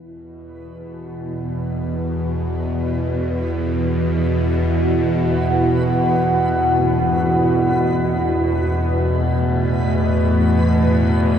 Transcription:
Already playing: synth drone E2 B2, analog synth pad E4 B4, synth texture B4
3.98 analog synth pad F#5
6.79 tam-tam
9.13 analog synth pad A3
9.65 analog synth pad E4

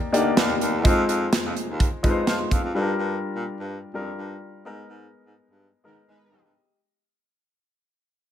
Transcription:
Already playing: grand piano A#3 D#4 G4 A#4 D5 G5
0.12 baritone saxophone D2, grand piano A#3 D#4 G4 D5, closed hi-hat
0.37 baritone saxophone D#2, snare, closed hi-hat
0.61 baritone saxophone D#2, closed hi-hat
0.84 baritone saxophone F2, grand piano G#3 D#4 F4 C5, kick, closed hi-hat
1.08 baritone saxophone F2, closed hi-hat
1.33 snare, closed hi-hat
1.45 baritone saxophone F2
1.57 closed hi-hat
1.69 baritone saxophone D#2
1.80 kick, closed hi-hat
2.03 baritone saxophone F2, grand piano G#3 D#4 F4 B4, kick, closed hi-hat
2.10 grand piano C5
2.27 baritone saxophone F3, grand piano C6, snare, closed hi-hat
2.51 baritone saxophone F2, grand piano F5, kick, closed hi-hat
2.64 baritone saxophone F2
2.75 baritone saxophone G2, grand piano G3 D4 F4 A4
2.82 grand piano A#4
2.99 baritone saxophone G2
3.36 baritone saxophone A#2
3.59 baritone saxophone G2
3.94 baritone saxophone F2, grand piano G3 D4 F4 A#4
4.18 baritone saxophone G2
4.65 baritone saxophone G#2, grand piano G#3 B3 D#4 A#4
4.89 baritone saxophone G#2
5.26 baritone saxophone G#2
5.50 baritone saxophone G2
5.84 baritone saxophone G#2, analog polysynth D#3 B3 A#4, grand piano G#3 B3 D#4 A#4
6.08 baritone saxophone G#3, analog polysynth G#3 D#4 B4, grand piano D#4 B4
6.32 baritone saxophone G#2, grand piano G4 D#5
6.45 baritone saxophone G2

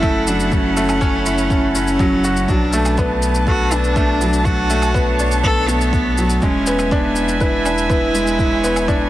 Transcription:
Already playing: sub bass F#1, felt piano A3 C#4 A4, cello E4, string quartet E4 A4 F#5
0.02 felt piano A3, kick, shaker
0.27 felt piano F#3, cello D4, shaker
0.40 shaker
0.52 cello C#4, kick, shaker
0.77 felt piano A3, shaker
0.89 low woodblock, shaker
1.01 felt piano C#4, kick, shaker
1.26 felt piano E4, shaker
1.38 shaker
1.50 felt piano C#4, kick, shaker
1.75 cello C#4, felt piano C#4, shaker
1.87 shaker
1.99 felt piano F#3, kick, shaker
2.24 felt piano F#4, shaker
2.37 shaker
2.48 sub bass B1, felt piano F#3, cello D4, string quartet D4 B4 A5, kick, shaker
2.73 felt piano A3, shaker
2.85 low woodblock, shaker
2.98 felt piano B3, kick, shaker
3.22 shaker
3.35 shaker
3.47 cello F#4, felt piano A4, kick, shaker
3.72 felt piano B3, cello D4, low woodblock, shaker
3.84 shaker
3.96 felt piano A3, kick, shaker
4.21 felt piano F#3, shaker
4.33 shaker
4.45 cello F#4, string quartet C#5, kick, shaker
4.70 felt piano A3, shaker
4.82 low woodblock, shaker
4.94 felt piano B3, kick, shaker
5.19 felt piano D4, shaker
5.31 shaker
5.44 felt piano B3, cello A4, kick, shaker
5.68 felt piano A3, cello B3, shaker
5.81 shaker
5.93 kick, shaker
6.18 felt piano F#3, shaker
6.30 shaker
6.42 sub bass E1, felt piano G#3, cello C#4, string quartet E4 E5 G#5, kick, shaker
6.67 felt piano B3, shaker
6.79 low woodblock, shaker
6.91 cello B3, felt piano D4, kick, shaker
7.16 shaker
7.28 shaker
7.41 cello E4, felt piano B4, kick, shaker
7.65 felt piano D4, low woodblock, shaker
7.78 shaker
7.90 felt piano B3, kick, shaker
8.15 felt piano G#3, shaker
8.27 shaker
8.39 string quartet C#5, kick, shaker
8.64 felt piano B3, shaker
8.76 low woodblock, shaker
8.88 felt piano D4, kick, shaker

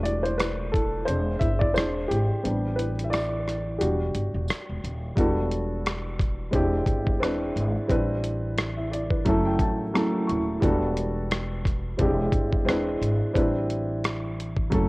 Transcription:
Already playing: upright bass E1, upright piano G3 A3 D4 F#4 B4
0.03 upright piano D5, closed hi-hat
0.23 upright piano C5, closed hi-hat
0.38 upright piano B4, cross-stick, closed hi-hat, tambourine
0.72 upright piano A4, kick, closed hi-hat
1.05 upright bass E1, upright piano G#3 C4 D4 C5, closed hi-hat
1.39 upright bass G1, upright piano E5, kick, closed hi-hat
1.59 upright piano D5, kick
1.74 upright bass E1, upright piano G#3 C4 D4 C5, cross-stick, tambourine
1.78 closed hi-hat
2.08 upright bass G#1, upright piano G4, closed hi-hat
2.43 upright bass A1, upright piano G3 B3 C4 D4, closed hi-hat
2.76 upright piano B4, closed hi-hat
2.99 closed hi-hat
3.04 upright piano E5
3.10 upright piano D5, cross-stick, closed hi-hat, tambourine
3.48 cross-stick, closed hi-hat
3.79 upright bass E1, upright piano G3 D4 F#4 G4, closed hi-hat
4.15 upright bass G1, closed hi-hat
4.35 upright bass E1
4.48 cross-stick, closed hi-hat, tambourine
4.69 upright bass E1
4.84 upright bass D#1, closed hi-hat
5.16 upright bass E1, upright piano G3 B3 D4 F#4 A4, kick, closed hi-hat
5.52 closed hi-hat
5.86 cross-stick, closed hi-hat
6.19 kick, cross-stick, closed hi-hat
6.51 upright bass E1, upright piano G#3 C4 D4 E4, kick, closed hi-hat
6.55 upright piano G4
6.86 upright bass G1, kick, closed hi-hat
7.07 kick
7.19 upright bass E1, upright piano G#3 C4 D4 E4 B4, cross-stick
7.24 closed hi-hat
7.56 upright bass G#1, closed hi-hat
7.87 upright bass A1, upright piano G3 C4 D4 E4 B4, kick, closed hi-hat
8.24 closed hi-hat
8.58 cross-stick, closed hi-hat
8.77 upright piano E5
8.92 upright piano D5, closed hi-hat
9.10 upright piano B4, kick
9.25 upright bass F#1, upright piano F#3 A3 C#4 E4 A4 E5, kick, closed hi-hat
9.45 upright piano G5
9.59 upright bass A1, upright piano A5, kick, closed hi-hat
9.94 upright piano F#3 A3 C#4 E4 A5, cross-stick, closed hi-hat
9.98 upright piano A4
10.27 upright bass D#1, upright piano C#6, closed hi-hat
10.60 upright bass E1, upright piano G3 B3 D4 F#4 A4, kick, closed hi-hat
10.97 closed hi-hat
11.31 cross-stick, closed hi-hat
11.65 kick, cross-stick, closed hi-hat
11.97 upright bass E1, upright piano G3 C4 D4 E4, kick, closed hi-hat
12.01 upright piano G#3 G4
12.32 upright bass G1, kick, closed hi-hat
12.53 kick
12.65 upright bass E1, upright piano G#3 C4 D4 E4 B4, cross-stick
12.69 closed hi-hat
13.02 upright bass G#1, closed hi-hat
13.33 upright bass A1, upright piano G3 C4 D4 E4, kick, closed hi-hat
13.38 upright piano B4
13.70 closed hi-hat
14.04 cross-stick, closed hi-hat
14.40 closed hi-hat
14.57 kick
14.70 upright bass F#1, upright piano F#3 A3 C#4 E4, kick, closed hi-hat
14.74 upright piano A4

